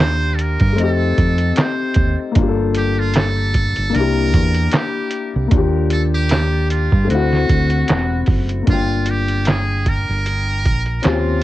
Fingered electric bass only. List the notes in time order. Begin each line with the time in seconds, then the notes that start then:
Already playing: D#2
0.61 G2
0.79 F2
1.19 F2
1.97 D#2
2.37 G1
3.78 G1
3.95 C2
4.34 E2
5.36 C2
5.52 D#2
6.93 G2
7.11 D2
7.50 D2
7.90 E1
8.28 F#1
8.68 G1
10.09 G1
10.66 A#1
11.06 D#2